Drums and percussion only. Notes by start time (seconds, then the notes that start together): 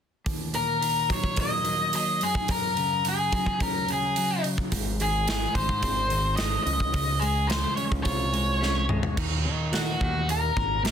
0.26 kick, open hi-hat
0.54 open hi-hat
0.82 open hi-hat
1.10 kick, open hi-hat
1.24 kick
1.36 kick, open hi-hat
1.65 open hi-hat
1.93 open hi-hat
2.21 open hi-hat
2.35 kick
2.48 kick, open hi-hat
2.77 open hi-hat
3.05 open hi-hat
3.32 kick, open hi-hat
3.46 kick
3.60 kick, open hi-hat
3.88 open hi-hat
4.16 open hi-hat
4.44 open hi-hat
4.58 kick
4.72 kick, open hi-hat
5.00 open hi-hat
5.28 snare, open hi-hat
5.55 kick, open hi-hat
5.69 kick
5.83 kick, open hi-hat
6.10 open hi-hat
6.37 snare, open hi-hat
6.67 open hi-hat
6.80 kick
6.94 kick, open hi-hat
7.22 open hi-hat
7.50 snare, open hi-hat
7.77 open hi-hat
7.92 kick
8.05 kick, open hi-hat
8.34 open hi-hat
8.62 snare
8.89 mid tom
9.03 floor tom
9.17 kick, crash
9.73 snare, open hi-hat
10.01 kick
10.29 open hi-hat
10.57 kick
10.85 snare, open hi-hat